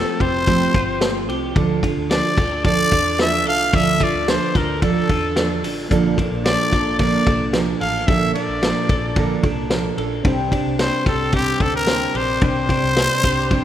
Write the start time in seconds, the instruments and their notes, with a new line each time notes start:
Already playing: clean electric guitar F3 F4 G4, steel-string acoustic guitar A3 C4 F4 G4, trumpet A4
0.19 fingered electric bass F1, steel-string acoustic guitar C4 F4 G4, trumpet C5, kick, ride
0.47 steel-string acoustic guitar F3 A3 C4 F4 G4, kick, ride
0.74 fingered electric bass G1, steel-string acoustic guitar C4 F4, kick, ride
1.01 steel-string acoustic guitar A3 C4 F4 G4, snare, ride
1.28 fingered electric bass C2, steel-string acoustic guitar C4 F4 G4, ride
1.55 fingered electric bass D2, steel-string acoustic guitar D3 F3 D4 F4 A4, kick, ride
1.83 steel-string acoustic guitar D4 F4 A4, kick, ride
1.97 fingered electric bass D2
2.10 steel-string acoustic guitar F3 D4 F4 A4, trumpet D5, snare, ride
2.37 fingered electric bass D2, steel-string acoustic guitar D4 F4 A4, clean electric guitar G4, kick, ride
2.51 clean electric guitar A4
2.64 steel-string acoustic guitar D3 F3 D4 F4 A4, trumpet D5, kick, ride
2.91 fingered electric bass E2, steel-string acoustic guitar D4 F4 A4, kick, ride
3.19 steel-string acoustic guitar F3 D4 F4 A4, trumpet E5, snare, ride
3.46 fingered electric bass C2, steel-string acoustic guitar D4 F4 A4, trumpet F5, ride
3.73 fingered electric bass D2, steel-string acoustic guitar D3 F3 D4 F4 A4, trumpet E5, kick, ride
4.00 steel-string acoustic guitar D4 F4 A4, trumpet D5, kick, ride
4.14 fingered electric bass D2
4.28 steel-string acoustic guitar F3 D4 F4 A4, trumpet C5, snare, ride
4.55 fingered electric bass D2, steel-string acoustic guitar D4 F4 A4, trumpet A#4, kick, snare, ride
4.82 steel-string acoustic guitar D3 F3 D4 F4 A4, trumpet A4, kick, ride
5.08 fingered electric bass E2, steel-string acoustic guitar D4 F4 A4, kick, ride
5.36 steel-string acoustic guitar F3 D4 F4 A4, snare, ride
5.63 fingered electric bass A1, steel-string acoustic guitar D4 F4 A4, open hi-hat, ride
5.89 fingered electric bass A#1, steel-string acoustic guitar A#2 D3 F3 A#3 D4 A4, synth keys A#3 D4 F4, kick, hi-hat pedal, ride
5.93 synth keys A4
6.18 steel-string acoustic guitar F3 A#3 D4 A4, kick, ride
6.31 fingered electric bass A#1
6.45 steel-string acoustic guitar F3 A#3 D4 A4, trumpet D5, snare, ride
6.71 fingered electric bass A#1, steel-string acoustic guitar F3 A#3 D4 A4, kick, snare, ride
6.99 steel-string acoustic guitar A#2 D3 F3 A#3 D4 A4, trumpet D5, kick, ride
7.25 fingered electric bass C2, steel-string acoustic guitar F3 A#3 D4 A4, kick, ride
7.52 steel-string acoustic guitar F3 A#3 D4 A4, snare, ride
7.79 fingered electric bass A1, steel-string acoustic guitar F3 A#3 D4 A4, trumpet F5, ride
8.06 fingered electric bass A#1, steel-string acoustic guitar A#2 D3 F3 A#3 D4 A4, synth keys A#3 D4 F4 A4, trumpet E5, kick, ride
8.34 steel-string acoustic guitar F3 A#3 D4 A4, trumpet D5, ride
8.48 fingered electric bass A#1
8.62 steel-string acoustic guitar F3 A#3 D4 A4, snare, ride
8.89 fingered electric bass A#1, steel-string acoustic guitar F3 A#3 D4 A4, kick, ride
9.16 steel-string acoustic guitar A#2 D3 F3 A#3 D4 A4, kick, ride
9.43 fingered electric bass C2, steel-string acoustic guitar F3 A#3 D4 A4, kick, ride
9.70 steel-string acoustic guitar F3 A#3 D4 A4, snare, ride
9.97 fingered electric bass A#1, steel-string acoustic guitar F3 A#3 D4 A4, ride
10.23 fingered electric bass C2, steel-string acoustic guitar C3 G3 C4 D4 G4, synth keys C4 D4 G4, kick, ride
10.27 synth keys C5
10.51 steel-string acoustic guitar C4 D4 G4, kick, ride
10.66 fingered electric bass C2
10.78 steel-string acoustic guitar G3 C4 D4 G4, trumpet C5, snare, ride
11.05 fingered electric bass C2, steel-string acoustic guitar C4 D4 G4, trumpet A4, kick, snare, ride
11.32 steel-string acoustic guitar C3 G3 C4 D4 G4, trumpet G4, kick, ride
11.59 fingered electric bass D2, steel-string acoustic guitar C4 D4 G4, trumpet A4, kick, ride
11.76 trumpet A#4
11.86 steel-string acoustic guitar G3 C4 D4 G4, snare, ride
12.14 fingered electric bass A#1, steel-string acoustic guitar C4 D4 G4, trumpet C5, ride
12.41 fingered electric bass C2, steel-string acoustic guitar C3 G3 C4 D4 G4, synth keys C4 D4 G4 C5, trumpet C5, kick, ride
12.69 steel-string acoustic guitar C4 D4 G4, kick, ride
12.83 fingered electric bass C2
12.96 steel-string acoustic guitar G3 D4, clean electric guitar C4, snare, ride
13.23 fingered electric bass C2, steel-string acoustic guitar C4 D4 G4, kick, ride
13.51 steel-string acoustic guitar C3 G3 C4 D4 G4, kick, ride